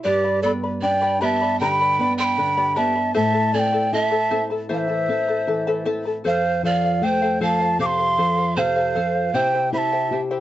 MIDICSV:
0, 0, Header, 1, 5, 480
1, 0, Start_track
1, 0, Key_signature, 0, "minor"
1, 0, Tempo, 774194
1, 26, Time_signature, 4, 2, 24, 8
1, 6449, End_track
2, 0, Start_track
2, 0, Title_t, "Quena"
2, 0, Program_c, 0, 77
2, 25, Note_on_c, 0, 74, 92
2, 250, Note_off_c, 0, 74, 0
2, 263, Note_on_c, 0, 74, 80
2, 318, Note_off_c, 0, 74, 0
2, 513, Note_on_c, 0, 79, 88
2, 751, Note_on_c, 0, 83, 82
2, 760, Note_off_c, 0, 79, 0
2, 777, Note_on_c, 0, 81, 89
2, 783, Note_off_c, 0, 83, 0
2, 991, Note_off_c, 0, 81, 0
2, 996, Note_on_c, 0, 83, 111
2, 1330, Note_off_c, 0, 83, 0
2, 1364, Note_on_c, 0, 84, 98
2, 1389, Note_on_c, 0, 83, 107
2, 1395, Note_off_c, 0, 84, 0
2, 1720, Note_on_c, 0, 81, 90
2, 1729, Note_off_c, 0, 83, 0
2, 1956, Note_off_c, 0, 81, 0
2, 1960, Note_on_c, 0, 81, 93
2, 2200, Note_on_c, 0, 80, 87
2, 2209, Note_off_c, 0, 81, 0
2, 2227, Note_on_c, 0, 79, 94
2, 2233, Note_off_c, 0, 80, 0
2, 2440, Note_on_c, 0, 81, 91
2, 2450, Note_off_c, 0, 79, 0
2, 2751, Note_off_c, 0, 81, 0
2, 2935, Note_on_c, 0, 77, 82
2, 2966, Note_on_c, 0, 76, 89
2, 2972, Note_off_c, 0, 77, 0
2, 3620, Note_off_c, 0, 76, 0
2, 3890, Note_on_c, 0, 77, 94
2, 4105, Note_off_c, 0, 77, 0
2, 4124, Note_on_c, 0, 77, 80
2, 4361, Note_on_c, 0, 79, 93
2, 4370, Note_off_c, 0, 77, 0
2, 4596, Note_off_c, 0, 79, 0
2, 4604, Note_on_c, 0, 81, 96
2, 4821, Note_off_c, 0, 81, 0
2, 4844, Note_on_c, 0, 86, 107
2, 4872, Note_on_c, 0, 84, 116
2, 4878, Note_off_c, 0, 86, 0
2, 5317, Note_on_c, 0, 77, 90
2, 5327, Note_off_c, 0, 84, 0
2, 5797, Note_on_c, 0, 79, 92
2, 5806, Note_off_c, 0, 77, 0
2, 6031, Note_off_c, 0, 79, 0
2, 6038, Note_on_c, 0, 83, 83
2, 6063, Note_on_c, 0, 81, 90
2, 6069, Note_off_c, 0, 83, 0
2, 6323, Note_off_c, 0, 81, 0
2, 6449, End_track
3, 0, Start_track
3, 0, Title_t, "Pan flute"
3, 0, Program_c, 1, 75
3, 28, Note_on_c, 1, 67, 79
3, 251, Note_off_c, 1, 67, 0
3, 266, Note_on_c, 1, 69, 69
3, 320, Note_off_c, 1, 69, 0
3, 507, Note_on_c, 1, 74, 84
3, 754, Note_on_c, 1, 76, 83
3, 764, Note_off_c, 1, 74, 0
3, 984, Note_off_c, 1, 76, 0
3, 988, Note_on_c, 1, 79, 92
3, 1325, Note_off_c, 1, 79, 0
3, 1351, Note_on_c, 1, 79, 88
3, 1713, Note_on_c, 1, 76, 79
3, 1722, Note_off_c, 1, 79, 0
3, 1944, Note_off_c, 1, 76, 0
3, 1948, Note_on_c, 1, 76, 89
3, 2193, Note_on_c, 1, 74, 79
3, 2202, Note_off_c, 1, 76, 0
3, 2441, Note_on_c, 1, 76, 86
3, 2450, Note_off_c, 1, 74, 0
3, 2751, Note_off_c, 1, 76, 0
3, 2922, Note_on_c, 1, 72, 71
3, 3613, Note_off_c, 1, 72, 0
3, 3881, Note_on_c, 1, 72, 74
3, 4100, Note_off_c, 1, 72, 0
3, 4126, Note_on_c, 1, 74, 72
3, 4361, Note_on_c, 1, 72, 84
3, 4371, Note_off_c, 1, 74, 0
3, 4597, Note_off_c, 1, 72, 0
3, 4602, Note_on_c, 1, 77, 74
3, 4820, Note_off_c, 1, 77, 0
3, 4829, Note_on_c, 1, 77, 88
3, 5308, Note_on_c, 1, 72, 75
3, 5318, Note_off_c, 1, 77, 0
3, 5787, Note_off_c, 1, 72, 0
3, 5787, Note_on_c, 1, 72, 83
3, 6026, Note_off_c, 1, 72, 0
3, 6029, Note_on_c, 1, 76, 78
3, 6318, Note_off_c, 1, 76, 0
3, 6449, End_track
4, 0, Start_track
4, 0, Title_t, "Charango"
4, 0, Program_c, 2, 24
4, 28, Note_on_c, 2, 67, 73
4, 30, Note_on_c, 2, 79, 69
4, 33, Note_on_c, 2, 71, 76
4, 33, Note_on_c, 2, 74, 75
4, 34, Note_on_c, 2, 83, 84
4, 143, Note_off_c, 2, 83, 0
4, 145, Note_off_c, 2, 74, 0
4, 148, Note_off_c, 2, 67, 0
4, 148, Note_off_c, 2, 79, 0
4, 150, Note_off_c, 2, 71, 0
4, 150, Note_on_c, 2, 83, 46
4, 152, Note_on_c, 2, 74, 46
4, 157, Note_on_c, 2, 71, 37
4, 269, Note_off_c, 2, 83, 0
4, 270, Note_off_c, 2, 74, 0
4, 271, Note_off_c, 2, 71, 0
4, 275, Note_on_c, 2, 79, 54
4, 278, Note_on_c, 2, 71, 58
4, 281, Note_on_c, 2, 74, 65
4, 285, Note_on_c, 2, 83, 61
4, 387, Note_off_c, 2, 74, 0
4, 387, Note_off_c, 2, 83, 0
4, 392, Note_off_c, 2, 79, 0
4, 393, Note_off_c, 2, 71, 0
4, 395, Note_on_c, 2, 74, 45
4, 395, Note_on_c, 2, 83, 56
4, 400, Note_on_c, 2, 71, 47
4, 508, Note_off_c, 2, 71, 0
4, 510, Note_off_c, 2, 74, 0
4, 512, Note_off_c, 2, 83, 0
4, 515, Note_on_c, 2, 71, 52
4, 515, Note_on_c, 2, 79, 56
4, 517, Note_on_c, 2, 74, 63
4, 523, Note_on_c, 2, 83, 61
4, 622, Note_off_c, 2, 83, 0
4, 624, Note_off_c, 2, 74, 0
4, 626, Note_off_c, 2, 71, 0
4, 626, Note_off_c, 2, 79, 0
4, 630, Note_on_c, 2, 83, 70
4, 631, Note_on_c, 2, 74, 64
4, 633, Note_on_c, 2, 79, 61
4, 634, Note_on_c, 2, 71, 62
4, 636, Note_on_c, 2, 67, 57
4, 745, Note_off_c, 2, 67, 0
4, 745, Note_off_c, 2, 71, 0
4, 745, Note_off_c, 2, 79, 0
4, 748, Note_off_c, 2, 83, 0
4, 751, Note_off_c, 2, 74, 0
4, 752, Note_on_c, 2, 79, 72
4, 753, Note_on_c, 2, 67, 72
4, 753, Note_on_c, 2, 71, 86
4, 756, Note_on_c, 2, 83, 87
4, 757, Note_on_c, 2, 74, 80
4, 868, Note_off_c, 2, 83, 0
4, 871, Note_off_c, 2, 67, 0
4, 871, Note_off_c, 2, 71, 0
4, 871, Note_off_c, 2, 79, 0
4, 874, Note_off_c, 2, 74, 0
4, 876, Note_on_c, 2, 83, 55
4, 882, Note_on_c, 2, 74, 56
4, 887, Note_on_c, 2, 71, 41
4, 993, Note_off_c, 2, 83, 0
4, 994, Note_off_c, 2, 71, 0
4, 994, Note_off_c, 2, 74, 0
4, 1000, Note_on_c, 2, 67, 75
4, 1001, Note_on_c, 2, 74, 76
4, 1002, Note_on_c, 2, 71, 75
4, 1002, Note_on_c, 2, 79, 74
4, 1003, Note_on_c, 2, 83, 83
4, 1113, Note_off_c, 2, 83, 0
4, 1115, Note_off_c, 2, 67, 0
4, 1116, Note_off_c, 2, 71, 0
4, 1116, Note_off_c, 2, 74, 0
4, 1116, Note_off_c, 2, 79, 0
4, 1121, Note_on_c, 2, 83, 51
4, 1125, Note_on_c, 2, 74, 50
4, 1129, Note_on_c, 2, 71, 44
4, 1234, Note_off_c, 2, 71, 0
4, 1236, Note_off_c, 2, 83, 0
4, 1238, Note_off_c, 2, 74, 0
4, 1241, Note_on_c, 2, 79, 53
4, 1242, Note_on_c, 2, 71, 58
4, 1246, Note_on_c, 2, 74, 63
4, 1249, Note_on_c, 2, 83, 65
4, 1350, Note_off_c, 2, 83, 0
4, 1355, Note_off_c, 2, 74, 0
4, 1356, Note_off_c, 2, 79, 0
4, 1357, Note_off_c, 2, 71, 0
4, 1358, Note_on_c, 2, 83, 53
4, 1362, Note_on_c, 2, 74, 49
4, 1368, Note_on_c, 2, 71, 42
4, 1473, Note_off_c, 2, 71, 0
4, 1474, Note_off_c, 2, 74, 0
4, 1474, Note_on_c, 2, 79, 53
4, 1475, Note_off_c, 2, 83, 0
4, 1481, Note_on_c, 2, 71, 55
4, 1482, Note_on_c, 2, 74, 58
4, 1485, Note_on_c, 2, 83, 57
4, 1588, Note_off_c, 2, 71, 0
4, 1589, Note_off_c, 2, 83, 0
4, 1591, Note_off_c, 2, 74, 0
4, 1592, Note_off_c, 2, 79, 0
4, 1596, Note_on_c, 2, 71, 62
4, 1596, Note_on_c, 2, 83, 67
4, 1599, Note_on_c, 2, 67, 56
4, 1599, Note_on_c, 2, 74, 66
4, 1599, Note_on_c, 2, 79, 58
4, 1704, Note_off_c, 2, 67, 0
4, 1705, Note_off_c, 2, 71, 0
4, 1706, Note_off_c, 2, 79, 0
4, 1708, Note_off_c, 2, 74, 0
4, 1709, Note_off_c, 2, 83, 0
4, 1711, Note_on_c, 2, 67, 81
4, 1712, Note_on_c, 2, 71, 71
4, 1713, Note_on_c, 2, 79, 82
4, 1715, Note_on_c, 2, 74, 82
4, 1716, Note_on_c, 2, 83, 81
4, 1825, Note_off_c, 2, 83, 0
4, 1826, Note_off_c, 2, 74, 0
4, 1831, Note_off_c, 2, 71, 0
4, 1832, Note_off_c, 2, 67, 0
4, 1833, Note_off_c, 2, 79, 0
4, 1833, Note_on_c, 2, 83, 47
4, 1834, Note_on_c, 2, 74, 47
4, 1838, Note_on_c, 2, 71, 38
4, 1948, Note_off_c, 2, 71, 0
4, 1948, Note_off_c, 2, 74, 0
4, 1949, Note_on_c, 2, 76, 71
4, 1950, Note_on_c, 2, 72, 77
4, 1951, Note_off_c, 2, 83, 0
4, 1951, Note_on_c, 2, 64, 75
4, 1951, Note_on_c, 2, 69, 75
4, 1953, Note_on_c, 2, 81, 84
4, 2059, Note_off_c, 2, 81, 0
4, 2061, Note_off_c, 2, 69, 0
4, 2066, Note_off_c, 2, 64, 0
4, 2067, Note_on_c, 2, 81, 46
4, 2068, Note_on_c, 2, 69, 43
4, 2071, Note_off_c, 2, 72, 0
4, 2071, Note_off_c, 2, 76, 0
4, 2073, Note_on_c, 2, 64, 38
4, 2183, Note_off_c, 2, 64, 0
4, 2186, Note_off_c, 2, 69, 0
4, 2188, Note_on_c, 2, 76, 54
4, 2190, Note_off_c, 2, 81, 0
4, 2190, Note_on_c, 2, 64, 61
4, 2193, Note_on_c, 2, 69, 56
4, 2199, Note_on_c, 2, 81, 58
4, 2303, Note_off_c, 2, 81, 0
4, 2310, Note_off_c, 2, 69, 0
4, 2310, Note_on_c, 2, 81, 57
4, 2311, Note_off_c, 2, 76, 0
4, 2312, Note_off_c, 2, 64, 0
4, 2317, Note_on_c, 2, 69, 47
4, 2320, Note_on_c, 2, 64, 43
4, 2428, Note_off_c, 2, 64, 0
4, 2431, Note_off_c, 2, 69, 0
4, 2432, Note_off_c, 2, 81, 0
4, 2435, Note_on_c, 2, 64, 61
4, 2435, Note_on_c, 2, 76, 59
4, 2438, Note_on_c, 2, 69, 67
4, 2442, Note_on_c, 2, 81, 64
4, 2541, Note_off_c, 2, 81, 0
4, 2543, Note_off_c, 2, 64, 0
4, 2545, Note_off_c, 2, 69, 0
4, 2545, Note_off_c, 2, 76, 0
4, 2548, Note_on_c, 2, 81, 63
4, 2551, Note_on_c, 2, 64, 60
4, 2552, Note_on_c, 2, 69, 57
4, 2552, Note_on_c, 2, 76, 58
4, 2555, Note_on_c, 2, 72, 54
4, 2663, Note_off_c, 2, 72, 0
4, 2663, Note_off_c, 2, 76, 0
4, 2665, Note_off_c, 2, 64, 0
4, 2666, Note_off_c, 2, 69, 0
4, 2668, Note_off_c, 2, 81, 0
4, 2670, Note_on_c, 2, 76, 80
4, 2671, Note_on_c, 2, 72, 73
4, 2672, Note_on_c, 2, 64, 80
4, 2674, Note_on_c, 2, 69, 80
4, 2675, Note_on_c, 2, 81, 89
4, 2783, Note_off_c, 2, 81, 0
4, 2789, Note_off_c, 2, 69, 0
4, 2790, Note_on_c, 2, 81, 51
4, 2792, Note_off_c, 2, 72, 0
4, 2792, Note_off_c, 2, 76, 0
4, 2793, Note_off_c, 2, 64, 0
4, 2796, Note_on_c, 2, 69, 56
4, 2800, Note_on_c, 2, 64, 48
4, 2902, Note_off_c, 2, 64, 0
4, 2905, Note_off_c, 2, 69, 0
4, 2908, Note_on_c, 2, 76, 83
4, 2909, Note_on_c, 2, 64, 76
4, 2910, Note_off_c, 2, 81, 0
4, 2910, Note_on_c, 2, 72, 76
4, 2912, Note_on_c, 2, 69, 76
4, 2917, Note_on_c, 2, 81, 73
4, 3017, Note_off_c, 2, 81, 0
4, 3025, Note_on_c, 2, 81, 46
4, 3027, Note_off_c, 2, 64, 0
4, 3027, Note_off_c, 2, 69, 0
4, 3031, Note_off_c, 2, 76, 0
4, 3032, Note_off_c, 2, 72, 0
4, 3034, Note_on_c, 2, 64, 39
4, 3035, Note_on_c, 2, 69, 43
4, 3149, Note_off_c, 2, 64, 0
4, 3149, Note_off_c, 2, 69, 0
4, 3149, Note_off_c, 2, 81, 0
4, 3153, Note_on_c, 2, 76, 54
4, 3156, Note_on_c, 2, 69, 69
4, 3157, Note_on_c, 2, 64, 55
4, 3160, Note_on_c, 2, 81, 61
4, 3269, Note_off_c, 2, 81, 0
4, 3273, Note_off_c, 2, 76, 0
4, 3274, Note_off_c, 2, 69, 0
4, 3276, Note_off_c, 2, 64, 0
4, 3277, Note_on_c, 2, 81, 47
4, 3281, Note_on_c, 2, 69, 44
4, 3286, Note_on_c, 2, 64, 41
4, 3389, Note_off_c, 2, 64, 0
4, 3392, Note_off_c, 2, 81, 0
4, 3392, Note_on_c, 2, 76, 55
4, 3393, Note_off_c, 2, 69, 0
4, 3396, Note_on_c, 2, 64, 61
4, 3400, Note_on_c, 2, 81, 64
4, 3401, Note_on_c, 2, 69, 59
4, 3509, Note_off_c, 2, 81, 0
4, 3512, Note_off_c, 2, 69, 0
4, 3513, Note_off_c, 2, 76, 0
4, 3515, Note_off_c, 2, 64, 0
4, 3516, Note_on_c, 2, 81, 81
4, 3520, Note_on_c, 2, 69, 76
4, 3521, Note_on_c, 2, 76, 65
4, 3523, Note_on_c, 2, 64, 68
4, 3523, Note_on_c, 2, 72, 65
4, 3622, Note_off_c, 2, 72, 0
4, 3624, Note_off_c, 2, 64, 0
4, 3624, Note_off_c, 2, 76, 0
4, 3627, Note_off_c, 2, 69, 0
4, 3628, Note_off_c, 2, 81, 0
4, 3629, Note_on_c, 2, 72, 86
4, 3631, Note_on_c, 2, 76, 84
4, 3632, Note_on_c, 2, 64, 86
4, 3635, Note_on_c, 2, 69, 90
4, 3635, Note_on_c, 2, 81, 96
4, 3746, Note_off_c, 2, 81, 0
4, 3751, Note_off_c, 2, 72, 0
4, 3752, Note_off_c, 2, 76, 0
4, 3753, Note_off_c, 2, 64, 0
4, 3754, Note_off_c, 2, 69, 0
4, 3754, Note_on_c, 2, 81, 54
4, 3761, Note_on_c, 2, 69, 41
4, 3764, Note_on_c, 2, 64, 44
4, 3862, Note_off_c, 2, 69, 0
4, 3867, Note_off_c, 2, 64, 0
4, 3870, Note_on_c, 2, 69, 78
4, 3874, Note_off_c, 2, 81, 0
4, 3875, Note_on_c, 2, 72, 82
4, 3878, Note_on_c, 2, 77, 73
4, 3986, Note_off_c, 2, 77, 0
4, 3991, Note_off_c, 2, 69, 0
4, 3994, Note_off_c, 2, 72, 0
4, 3994, Note_on_c, 2, 77, 50
4, 4003, Note_on_c, 2, 72, 39
4, 4113, Note_off_c, 2, 77, 0
4, 4114, Note_off_c, 2, 72, 0
4, 4115, Note_on_c, 2, 69, 54
4, 4121, Note_on_c, 2, 72, 63
4, 4124, Note_on_c, 2, 77, 59
4, 4228, Note_off_c, 2, 77, 0
4, 4233, Note_off_c, 2, 72, 0
4, 4234, Note_off_c, 2, 69, 0
4, 4236, Note_on_c, 2, 77, 58
4, 4240, Note_on_c, 2, 72, 46
4, 4347, Note_off_c, 2, 72, 0
4, 4350, Note_on_c, 2, 69, 58
4, 4351, Note_off_c, 2, 77, 0
4, 4355, Note_on_c, 2, 72, 60
4, 4358, Note_on_c, 2, 77, 62
4, 4466, Note_off_c, 2, 72, 0
4, 4466, Note_off_c, 2, 77, 0
4, 4471, Note_off_c, 2, 69, 0
4, 4473, Note_on_c, 2, 72, 59
4, 4474, Note_on_c, 2, 77, 67
4, 4481, Note_on_c, 2, 69, 62
4, 4584, Note_off_c, 2, 69, 0
4, 4588, Note_off_c, 2, 72, 0
4, 4591, Note_off_c, 2, 77, 0
4, 4592, Note_on_c, 2, 69, 79
4, 4595, Note_on_c, 2, 72, 85
4, 4598, Note_on_c, 2, 77, 82
4, 4704, Note_off_c, 2, 77, 0
4, 4712, Note_off_c, 2, 69, 0
4, 4712, Note_off_c, 2, 72, 0
4, 4712, Note_on_c, 2, 77, 58
4, 4719, Note_on_c, 2, 72, 51
4, 4829, Note_off_c, 2, 72, 0
4, 4832, Note_off_c, 2, 77, 0
4, 4832, Note_on_c, 2, 69, 71
4, 4836, Note_on_c, 2, 72, 78
4, 4840, Note_on_c, 2, 77, 89
4, 4947, Note_off_c, 2, 77, 0
4, 4951, Note_off_c, 2, 69, 0
4, 4954, Note_off_c, 2, 72, 0
4, 4955, Note_on_c, 2, 77, 48
4, 4961, Note_on_c, 2, 72, 40
4, 5069, Note_off_c, 2, 72, 0
4, 5072, Note_on_c, 2, 69, 55
4, 5073, Note_off_c, 2, 77, 0
4, 5076, Note_on_c, 2, 72, 64
4, 5081, Note_on_c, 2, 77, 64
4, 5183, Note_off_c, 2, 77, 0
4, 5190, Note_on_c, 2, 77, 49
4, 5191, Note_off_c, 2, 69, 0
4, 5191, Note_off_c, 2, 72, 0
4, 5199, Note_on_c, 2, 72, 46
4, 5308, Note_off_c, 2, 72, 0
4, 5310, Note_off_c, 2, 77, 0
4, 5311, Note_on_c, 2, 69, 58
4, 5315, Note_on_c, 2, 72, 60
4, 5319, Note_on_c, 2, 77, 55
4, 5423, Note_off_c, 2, 77, 0
4, 5424, Note_off_c, 2, 72, 0
4, 5430, Note_off_c, 2, 69, 0
4, 5430, Note_on_c, 2, 77, 64
4, 5431, Note_on_c, 2, 72, 65
4, 5438, Note_on_c, 2, 69, 58
4, 5542, Note_off_c, 2, 69, 0
4, 5546, Note_off_c, 2, 72, 0
4, 5549, Note_off_c, 2, 77, 0
4, 5550, Note_on_c, 2, 69, 75
4, 5554, Note_on_c, 2, 72, 76
4, 5558, Note_on_c, 2, 77, 80
4, 5665, Note_off_c, 2, 77, 0
4, 5669, Note_off_c, 2, 69, 0
4, 5671, Note_off_c, 2, 72, 0
4, 5672, Note_on_c, 2, 77, 49
4, 5683, Note_on_c, 2, 72, 43
4, 5788, Note_off_c, 2, 72, 0
4, 5790, Note_off_c, 2, 77, 0
4, 5791, Note_on_c, 2, 67, 71
4, 5794, Note_on_c, 2, 76, 72
4, 5795, Note_on_c, 2, 72, 80
4, 5797, Note_on_c, 2, 79, 90
4, 5799, Note_on_c, 2, 64, 74
4, 5905, Note_off_c, 2, 79, 0
4, 5909, Note_off_c, 2, 67, 0
4, 5910, Note_off_c, 2, 76, 0
4, 5911, Note_off_c, 2, 72, 0
4, 5913, Note_off_c, 2, 64, 0
4, 5913, Note_on_c, 2, 79, 42
4, 5918, Note_on_c, 2, 72, 42
4, 5922, Note_on_c, 2, 64, 41
4, 6028, Note_off_c, 2, 64, 0
4, 6029, Note_off_c, 2, 79, 0
4, 6030, Note_off_c, 2, 72, 0
4, 6030, Note_on_c, 2, 76, 57
4, 6035, Note_on_c, 2, 64, 62
4, 6038, Note_on_c, 2, 72, 55
4, 6042, Note_on_c, 2, 79, 60
4, 6144, Note_off_c, 2, 79, 0
4, 6148, Note_off_c, 2, 76, 0
4, 6149, Note_off_c, 2, 72, 0
4, 6150, Note_off_c, 2, 64, 0
4, 6151, Note_on_c, 2, 79, 55
4, 6156, Note_on_c, 2, 72, 51
4, 6163, Note_on_c, 2, 64, 47
4, 6268, Note_off_c, 2, 79, 0
4, 6269, Note_off_c, 2, 64, 0
4, 6271, Note_off_c, 2, 72, 0
4, 6275, Note_on_c, 2, 76, 55
4, 6276, Note_on_c, 2, 64, 60
4, 6279, Note_on_c, 2, 72, 62
4, 6285, Note_on_c, 2, 79, 61
4, 6384, Note_off_c, 2, 79, 0
4, 6385, Note_off_c, 2, 64, 0
4, 6386, Note_off_c, 2, 72, 0
4, 6387, Note_off_c, 2, 76, 0
4, 6391, Note_on_c, 2, 79, 69
4, 6392, Note_on_c, 2, 64, 61
4, 6393, Note_on_c, 2, 72, 67
4, 6395, Note_on_c, 2, 76, 52
4, 6396, Note_on_c, 2, 67, 50
4, 6449, Note_off_c, 2, 64, 0
4, 6449, Note_off_c, 2, 67, 0
4, 6449, Note_off_c, 2, 72, 0
4, 6449, Note_off_c, 2, 76, 0
4, 6449, Note_off_c, 2, 79, 0
4, 6449, End_track
5, 0, Start_track
5, 0, Title_t, "Nylon-string guitar"
5, 0, Program_c, 3, 24
5, 32, Note_on_c, 3, 43, 64
5, 271, Note_on_c, 3, 59, 57
5, 503, Note_off_c, 3, 59, 0
5, 511, Note_on_c, 3, 62, 56
5, 744, Note_off_c, 3, 62, 0
5, 757, Note_on_c, 3, 59, 49
5, 987, Note_off_c, 3, 59, 0
5, 998, Note_on_c, 3, 50, 55
5, 1228, Note_off_c, 3, 50, 0
5, 1234, Note_on_c, 3, 59, 48
5, 1466, Note_off_c, 3, 59, 0
5, 1477, Note_on_c, 3, 50, 52
5, 1708, Note_off_c, 3, 50, 0
5, 1721, Note_on_c, 3, 59, 54
5, 1931, Note_off_c, 3, 43, 0
5, 1950, Note_off_c, 3, 59, 0
5, 1960, Note_on_c, 3, 45, 64
5, 2195, Note_on_c, 3, 60, 56
5, 2428, Note_off_c, 3, 60, 0
5, 2434, Note_on_c, 3, 64, 54
5, 2667, Note_off_c, 3, 64, 0
5, 2676, Note_on_c, 3, 60, 52
5, 2908, Note_off_c, 3, 60, 0
5, 2916, Note_on_c, 3, 52, 51
5, 3148, Note_off_c, 3, 52, 0
5, 3153, Note_on_c, 3, 60, 53
5, 3386, Note_off_c, 3, 60, 0
5, 3394, Note_on_c, 3, 52, 52
5, 3627, Note_off_c, 3, 52, 0
5, 3635, Note_on_c, 3, 60, 53
5, 3853, Note_off_c, 3, 45, 0
5, 3867, Note_off_c, 3, 60, 0
5, 3873, Note_on_c, 3, 41, 68
5, 4111, Note_on_c, 3, 53, 56
5, 4344, Note_off_c, 3, 53, 0
5, 4348, Note_on_c, 3, 57, 57
5, 4583, Note_off_c, 3, 57, 0
5, 4591, Note_on_c, 3, 53, 56
5, 4824, Note_off_c, 3, 53, 0
5, 4829, Note_on_c, 3, 48, 53
5, 5062, Note_off_c, 3, 48, 0
5, 5073, Note_on_c, 3, 53, 52
5, 5304, Note_off_c, 3, 53, 0
5, 5310, Note_on_c, 3, 48, 52
5, 5542, Note_off_c, 3, 48, 0
5, 5550, Note_on_c, 3, 53, 49
5, 5763, Note_off_c, 3, 41, 0
5, 5781, Note_off_c, 3, 53, 0
5, 5788, Note_on_c, 3, 48, 71
5, 6029, Note_on_c, 3, 64, 55
5, 6259, Note_off_c, 3, 64, 0
5, 6268, Note_on_c, 3, 67, 58
5, 6449, Note_off_c, 3, 48, 0
5, 6449, Note_off_c, 3, 67, 0
5, 6449, End_track
0, 0, End_of_file